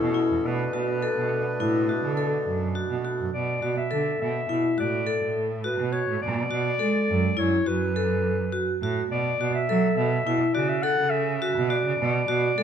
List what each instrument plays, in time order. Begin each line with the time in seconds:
Already playing: harmonium B2 A3 C#4, clarinet A4
0.02 cello B2
0.14 vibraphone E4
0.30 cello E2
0.43 cello B2, harmonium A3 D4, clarinet B4
0.73 cello B2, vibraphone F#4
1.02 vibraphone A4
1.17 cello B2
1.60 cello A2, vibraphone E4
1.89 vibraphone F#4
2.03 cello D3
2.17 vibraphone A4
2.46 cello F#2
2.75 vibraphone F#4
2.91 cello B2
3.05 vibraphone F#4
3.20 cello F#2
3.34 cello B2, clarinet D5
3.62 cello B2, vibraphone F#4
3.78 clarinet E5
3.91 cello D3, vibraphone A4
4.21 cello B2, clarinet E5
4.49 cello B2, vibraphone E4
4.78 cello A2, vibraphone F#4, clarinet D5
5.07 vibraphone A4
5.23 cello A2
5.64 vibraphone F#4, clarinet B4
5.79 cello B2
5.92 vibraphone F#4, clarinet C#5
6.09 cello A2
6.22 cello B2, clarinet D5
6.51 cello B2, vibraphone F#4
6.79 cello G#3, vibraphone A4
7.08 cello F#2
7.37 cello F#2, vibraphone E4, clarinet C#5
7.66 cello F#2, vibraphone F#4, clarinet B4
7.96 vibraphone A4
8.52 vibraphone F#4
8.82 cello A2, vibraphone F#4
9.11 cello B2, clarinet D5
9.40 cello B2, vibraphone F#4
9.54 clarinet E5
9.68 cello F#3, vibraphone A4
9.96 cello B2, clarinet E5
10.26 cello B2, vibraphone E4
10.54 cello C#3, vibraphone F#4, clarinet D5
10.69 clarinet E5
10.83 vibraphone A4, clarinet F#5
10.99 cello C#3
11.10 clarinet E5
11.42 vibraphone F#4
11.57 cello B2
11.69 vibraphone F#4, clarinet D5
11.85 cello C#3
11.99 cello B2
12.28 cello B2, vibraphone F#4
12.58 cello G#3, vibraphone A4